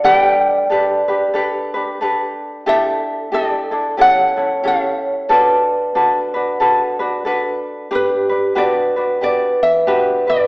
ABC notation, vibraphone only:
X:1
M:4/4
L:1/8
Q:"Swing" 1/4=92
K:D
V:1 name="Vibraphone"
d4 z4 | A2 A2 c2 c2 | B6- B z | [K:G] G2 B2 B B2 B |]